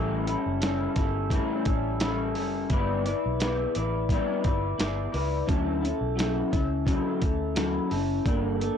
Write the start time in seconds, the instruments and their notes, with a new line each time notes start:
Already playing: fingered electric bass A1, clean electric guitar A2 E3 G3 C#4 E4 A4
0.26 clean electric guitar G3 C#4 E4 A4, closed hi-hat
0.46 fingered electric bass F#1
0.61 clean electric guitar G3 C#4 E4 A4, snare, closed hi-hat
0.95 fingered electric bass G1, clean electric guitar G3 C#4 E4 A4, kick, snare, closed hi-hat
1.30 clean electric guitar A2 E3 G3 C#4 E4 A4, kick, closed hi-hat
1.65 fingered electric bass A1, clean electric guitar G3 C#4 E4 A4, kick, closed hi-hat
2.00 clean electric guitar G3 C#4 E4 A4, snare, closed hi-hat
2.35 fingered electric bass F#1, clean electric guitar G3 C#4 E4 A4, open hi-hat
2.70 fingered electric bass G1, clean electric guitar G3 B3 E4 B4 D5, kick, closed hi-hat
3.05 clean electric guitar E4 B4 D5, closed hi-hat
3.26 fingered electric bass B1
3.40 clean electric guitar B3 E4 B4 D5, snare, closed hi-hat
3.75 fingered electric bass A1, clean electric guitar E4 B4 D5, closed hi-hat
4.09 clean electric guitar G3 B3 E4 B4 D5, kick, closed hi-hat
4.44 fingered electric bass G1, clean electric guitar E4 B4 D5, kick, closed hi-hat
4.78 fingered electric bass G1, clean electric guitar B3 E4 B4 D5, snare, closed hi-hat
5.12 fingered electric bass C#2, clean electric guitar E4 B4 D5, open hi-hat
5.46 fingered electric bass D2, clean electric guitar D3 F#3 C#4 E4 A4, kick, closed hi-hat
5.81 clean electric guitar C#4 E4 A4, closed hi-hat
6.01 fingered electric bass B1
6.16 clean electric guitar F#3 C#4 E4 A4, closed hi-hat
6.20 snare
6.51 fingered electric bass C#2, clean electric guitar C#4 E4 A4, kick, snare, closed hi-hat
6.86 clean electric guitar D3 F#3 C#4 E4 A4, kick, closed hi-hat
7.20 fingered electric bass D2, clean electric guitar C#4 E4 A4, kick, closed hi-hat
7.55 clean electric guitar F#3 C#4 E4 A4, snare, closed hi-hat
7.90 fingered electric bass F#1, clean electric guitar E4 A4, open hi-hat
7.94 clean electric guitar C#4
8.25 fingered electric bass G1, clean electric guitar G3 A#3 D4 A4, kick, closed hi-hat
8.59 clean electric guitar A#3 D4 A4, closed hi-hat